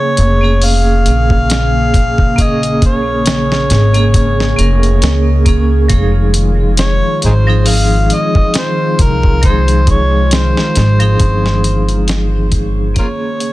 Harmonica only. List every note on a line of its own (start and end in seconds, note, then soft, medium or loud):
0.00 0.66 C#5 loud
0.64 2.44 F5 loud
2.43 2.84 D#5 loud
2.86 5.45 C#5 medium
6.80 7.20 C#5 loud
7.25 7.33 D#4 medium
7.25 7.32 G#4 medium
7.25 7.69 C5 medium
7.68 8.15 F5 loud
8.13 8.57 D#5 loud
8.58 9.04 C5 loud
9.02 9.48 A#4 loud
9.46 9.89 C5 loud
9.91 10.35 C#5 medium
10.34 12.09 C5 loud
12.99 13.08 F4 medium
12.99 13.05 A#4 medium
12.99 13.53 C#5 loud